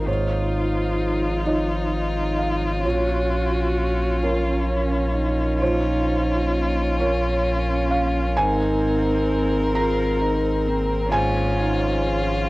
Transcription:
Already playing: sub bass G#1, felt piano D#4 A#4, ambient pad D#4
0.06 felt piano G#2 C#5, ambient pad F3 C#5, viola D#4, cello F4, violin F4
1.46 cello D#4, felt piano D#4 F4 C#5 D#5
2.38 felt piano F5
2.84 sub bass A#1, felt piano A#2 C#5, ambient pad F#3 F5, viola C#4, cello F#4
4.23 felt piano C#4 F4 A#4 C#5, cello F4
4.70 cello C#4
5.16 cello D#4
5.61 felt piano A#2 C5, ambient pad A#3 C#4, violin F4
6.99 felt piano C#4 F4 A#4 C#5, cello C#4
7.91 felt piano F5
8.35 sub bass G#1, felt piano G#2 G#5, viola C4, ambient pad D#4 C5, cello D#4, violin A#4
9.75 felt piano C4 G#4 A#4 A#5, cello F4
10.21 cello D#4
10.67 cello C4
11.12 felt piano G#2 G#5, ambient pad F3 C#5, viola C#4, cello C#4, violin F4
11.59 cello D#4
12.05 cello F4

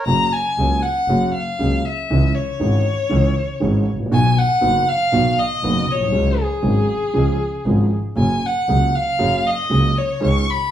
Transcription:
0.06 double bass F#1, grand piano F#2 F#3 A#3 C#4 G#4, violin A#5
0.32 violin G#5
0.58 double bass C#2, grand piano C#2 C#3 F#3 A#3 C#4 G#4
0.83 violin F#5
1.08 double bass F#1, grand piano F#2 F#3 A#3 C#4 G#4
1.34 violin F5
1.59 grand piano C#2 C#3 F#3 A#3 C#4 G#4, double bass C#2
1.85 violin E5
2.10 grand piano C#2 C#3 E3 G#3 C#4 G#4, double bass C#2
2.35 violin C#5
2.60 grand piano G#1 G#2 E3 G#3 C#4 G#4, double bass G#1
3.09 grand piano C#2 C#3 E3 G#3 C#4 G#4, double bass C#2
3.60 grand piano G#1 G#2 E3 G#3 C#4 G#4, double bass G#1
3.88 double bass A1
3.93 grand piano G#1
4.00 grand piano A1
4.06 grand piano A#1
4.11 grand piano B1 B2 D#3 F#3 B3 F#4, double bass B1, violin G#5
4.38 violin F#5
4.61 grand piano F#1 F#2 D#3 F#3 B3 F#4, double bass F#1
4.89 violin F5
5.12 grand piano B1 B2 D#3 F#3 B3 F#4, double bass B1
5.39 violin D#5
5.63 double bass F#1, grand piano F#1 F#2 D#3 F#3 B3 F#4
5.88 double bass B1, violin C#5
5.95 grand piano A#1
6.01 grand piano B1
6.07 grand piano C2
6.12 grand piano C#2 C#3 F#3 G#3 C#4 G#4, double bass C#2
6.42 violin G#4
6.62 grand piano G#1 G#2 F#3 G#3 C#4 G#4, double bass G#1
7.13 grand piano C#2 C#3 F3 G#3 C#4 G#4, double bass C#2
7.66 grand piano G#1 G#2 F3 G#3 C#4 G#4, double bass G#1
8.16 double bass F#1, grand piano F#2 F#3 A#3 C#4 G#4, violin G#5
8.47 violin F#5
8.68 double bass C#2, grand piano C#2 C#3 F#3 A#3 C#4 G#4
8.95 violin F5
9.19 double bass F#1, grand piano F#2 F#3 A#3 C#4 G#4
9.47 violin D#5
9.70 grand piano C#2 C#3 F#3 A#3 C#4 G#4, double bass C#2
9.98 violin C#5
10.20 grand piano C#2 C#3 D#3 G#3 C#4 G#4, double bass C#2
10.25 violin C#6
10.50 violin B5

